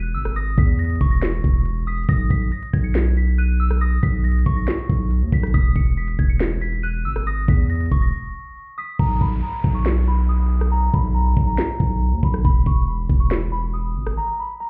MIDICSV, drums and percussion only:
0, 0, Header, 1, 2, 480
1, 0, Start_track
1, 0, Key_signature, 5, "major"
1, 0, Tempo, 431655
1, 401, Time_signature, 4, 2, 24, 8
1, 16343, End_track
2, 0, Start_track
2, 0, Title_t, "Drums"
2, 281, Note_on_c, 9, 37, 90
2, 392, Note_off_c, 9, 37, 0
2, 401, Note_on_c, 9, 42, 93
2, 512, Note_off_c, 9, 42, 0
2, 640, Note_on_c, 9, 46, 85
2, 642, Note_on_c, 9, 36, 95
2, 751, Note_off_c, 9, 46, 0
2, 753, Note_off_c, 9, 36, 0
2, 882, Note_on_c, 9, 42, 75
2, 941, Note_off_c, 9, 42, 0
2, 941, Note_on_c, 9, 42, 74
2, 1001, Note_off_c, 9, 42, 0
2, 1001, Note_on_c, 9, 42, 72
2, 1062, Note_off_c, 9, 42, 0
2, 1062, Note_on_c, 9, 42, 70
2, 1121, Note_off_c, 9, 42, 0
2, 1121, Note_on_c, 9, 42, 84
2, 1122, Note_on_c, 9, 36, 98
2, 1232, Note_off_c, 9, 42, 0
2, 1233, Note_off_c, 9, 36, 0
2, 1361, Note_on_c, 9, 38, 107
2, 1361, Note_on_c, 9, 42, 78
2, 1374, Note_on_c, 9, 39, 86
2, 1472, Note_off_c, 9, 42, 0
2, 1473, Note_off_c, 9, 38, 0
2, 1485, Note_off_c, 9, 39, 0
2, 1602, Note_on_c, 9, 36, 96
2, 1713, Note_off_c, 9, 36, 0
2, 1841, Note_on_c, 9, 42, 82
2, 1952, Note_off_c, 9, 42, 0
2, 2081, Note_on_c, 9, 42, 50
2, 2141, Note_off_c, 9, 42, 0
2, 2141, Note_on_c, 9, 42, 50
2, 2201, Note_off_c, 9, 42, 0
2, 2201, Note_on_c, 9, 42, 51
2, 2261, Note_off_c, 9, 42, 0
2, 2261, Note_on_c, 9, 42, 51
2, 2321, Note_off_c, 9, 42, 0
2, 2321, Note_on_c, 9, 36, 126
2, 2321, Note_on_c, 9, 42, 88
2, 2432, Note_off_c, 9, 36, 0
2, 2432, Note_off_c, 9, 42, 0
2, 2560, Note_on_c, 9, 42, 82
2, 2562, Note_on_c, 9, 36, 98
2, 2671, Note_off_c, 9, 42, 0
2, 2673, Note_off_c, 9, 36, 0
2, 2801, Note_on_c, 9, 42, 55
2, 2912, Note_off_c, 9, 42, 0
2, 2921, Note_on_c, 9, 42, 86
2, 3032, Note_off_c, 9, 42, 0
2, 3041, Note_on_c, 9, 42, 83
2, 3042, Note_on_c, 9, 36, 96
2, 3152, Note_off_c, 9, 42, 0
2, 3153, Note_off_c, 9, 36, 0
2, 3281, Note_on_c, 9, 38, 109
2, 3281, Note_on_c, 9, 42, 76
2, 3294, Note_on_c, 9, 39, 88
2, 3392, Note_off_c, 9, 38, 0
2, 3392, Note_off_c, 9, 42, 0
2, 3405, Note_off_c, 9, 39, 0
2, 3521, Note_on_c, 9, 42, 71
2, 3633, Note_off_c, 9, 42, 0
2, 3642, Note_on_c, 9, 42, 39
2, 3753, Note_off_c, 9, 42, 0
2, 3761, Note_on_c, 9, 42, 82
2, 3872, Note_off_c, 9, 42, 0
2, 4121, Note_on_c, 9, 37, 93
2, 4232, Note_off_c, 9, 37, 0
2, 4241, Note_on_c, 9, 42, 91
2, 4353, Note_off_c, 9, 42, 0
2, 4480, Note_on_c, 9, 42, 82
2, 4482, Note_on_c, 9, 36, 95
2, 4591, Note_off_c, 9, 42, 0
2, 4593, Note_off_c, 9, 36, 0
2, 4722, Note_on_c, 9, 42, 75
2, 4802, Note_off_c, 9, 42, 0
2, 4802, Note_on_c, 9, 42, 74
2, 4882, Note_off_c, 9, 42, 0
2, 4882, Note_on_c, 9, 42, 71
2, 4961, Note_off_c, 9, 42, 0
2, 4961, Note_on_c, 9, 42, 81
2, 4962, Note_on_c, 9, 36, 96
2, 5072, Note_off_c, 9, 42, 0
2, 5073, Note_off_c, 9, 36, 0
2, 5201, Note_on_c, 9, 42, 78
2, 5202, Note_on_c, 9, 38, 107
2, 5214, Note_on_c, 9, 39, 88
2, 5312, Note_off_c, 9, 42, 0
2, 5313, Note_off_c, 9, 38, 0
2, 5325, Note_off_c, 9, 39, 0
2, 5443, Note_on_c, 9, 36, 95
2, 5554, Note_off_c, 9, 36, 0
2, 5682, Note_on_c, 9, 42, 85
2, 5793, Note_off_c, 9, 42, 0
2, 5921, Note_on_c, 9, 36, 86
2, 5922, Note_on_c, 9, 42, 38
2, 6002, Note_off_c, 9, 42, 0
2, 6002, Note_on_c, 9, 42, 50
2, 6032, Note_off_c, 9, 36, 0
2, 6042, Note_on_c, 9, 37, 92
2, 6082, Note_off_c, 9, 42, 0
2, 6082, Note_on_c, 9, 42, 62
2, 6153, Note_off_c, 9, 37, 0
2, 6162, Note_off_c, 9, 42, 0
2, 6162, Note_on_c, 9, 36, 125
2, 6162, Note_on_c, 9, 42, 92
2, 6273, Note_off_c, 9, 36, 0
2, 6273, Note_off_c, 9, 42, 0
2, 6400, Note_on_c, 9, 42, 82
2, 6402, Note_on_c, 9, 36, 94
2, 6512, Note_off_c, 9, 42, 0
2, 6513, Note_off_c, 9, 36, 0
2, 6642, Note_on_c, 9, 42, 53
2, 6753, Note_off_c, 9, 42, 0
2, 6762, Note_on_c, 9, 42, 83
2, 6873, Note_off_c, 9, 42, 0
2, 6881, Note_on_c, 9, 42, 84
2, 6882, Note_on_c, 9, 36, 93
2, 6992, Note_off_c, 9, 42, 0
2, 6993, Note_off_c, 9, 36, 0
2, 7121, Note_on_c, 9, 38, 108
2, 7121, Note_on_c, 9, 42, 78
2, 7134, Note_on_c, 9, 39, 91
2, 7232, Note_off_c, 9, 42, 0
2, 7233, Note_off_c, 9, 38, 0
2, 7245, Note_off_c, 9, 39, 0
2, 7362, Note_on_c, 9, 42, 68
2, 7473, Note_off_c, 9, 42, 0
2, 7481, Note_on_c, 9, 42, 41
2, 7593, Note_off_c, 9, 42, 0
2, 7601, Note_on_c, 9, 42, 85
2, 7712, Note_off_c, 9, 42, 0
2, 7961, Note_on_c, 9, 37, 93
2, 8072, Note_off_c, 9, 37, 0
2, 8081, Note_on_c, 9, 42, 92
2, 8192, Note_off_c, 9, 42, 0
2, 8320, Note_on_c, 9, 46, 81
2, 8322, Note_on_c, 9, 36, 94
2, 8431, Note_off_c, 9, 46, 0
2, 8433, Note_off_c, 9, 36, 0
2, 8561, Note_on_c, 9, 42, 76
2, 8621, Note_off_c, 9, 42, 0
2, 8621, Note_on_c, 9, 42, 72
2, 8681, Note_off_c, 9, 42, 0
2, 8681, Note_on_c, 9, 42, 71
2, 8741, Note_off_c, 9, 42, 0
2, 8741, Note_on_c, 9, 42, 70
2, 8801, Note_off_c, 9, 42, 0
2, 8801, Note_on_c, 9, 42, 84
2, 8802, Note_on_c, 9, 36, 94
2, 8912, Note_off_c, 9, 42, 0
2, 8913, Note_off_c, 9, 36, 0
2, 10001, Note_on_c, 9, 36, 121
2, 10113, Note_off_c, 9, 36, 0
2, 10242, Note_on_c, 9, 36, 91
2, 10353, Note_off_c, 9, 36, 0
2, 10722, Note_on_c, 9, 36, 93
2, 10833, Note_off_c, 9, 36, 0
2, 10961, Note_on_c, 9, 38, 107
2, 10974, Note_on_c, 9, 39, 84
2, 11072, Note_off_c, 9, 38, 0
2, 11085, Note_off_c, 9, 39, 0
2, 11801, Note_on_c, 9, 37, 89
2, 11912, Note_off_c, 9, 37, 0
2, 12161, Note_on_c, 9, 36, 93
2, 12273, Note_off_c, 9, 36, 0
2, 12642, Note_on_c, 9, 36, 89
2, 12753, Note_off_c, 9, 36, 0
2, 12881, Note_on_c, 9, 38, 110
2, 12893, Note_on_c, 9, 39, 85
2, 12992, Note_off_c, 9, 38, 0
2, 13005, Note_off_c, 9, 39, 0
2, 13122, Note_on_c, 9, 36, 93
2, 13233, Note_off_c, 9, 36, 0
2, 13600, Note_on_c, 9, 36, 83
2, 13711, Note_off_c, 9, 36, 0
2, 13721, Note_on_c, 9, 37, 89
2, 13832, Note_off_c, 9, 37, 0
2, 13841, Note_on_c, 9, 36, 122
2, 13952, Note_off_c, 9, 36, 0
2, 14082, Note_on_c, 9, 36, 91
2, 14193, Note_off_c, 9, 36, 0
2, 14562, Note_on_c, 9, 36, 93
2, 14673, Note_off_c, 9, 36, 0
2, 14801, Note_on_c, 9, 38, 110
2, 14813, Note_on_c, 9, 39, 85
2, 14912, Note_off_c, 9, 38, 0
2, 14925, Note_off_c, 9, 39, 0
2, 15641, Note_on_c, 9, 37, 89
2, 15752, Note_off_c, 9, 37, 0
2, 16343, End_track
0, 0, End_of_file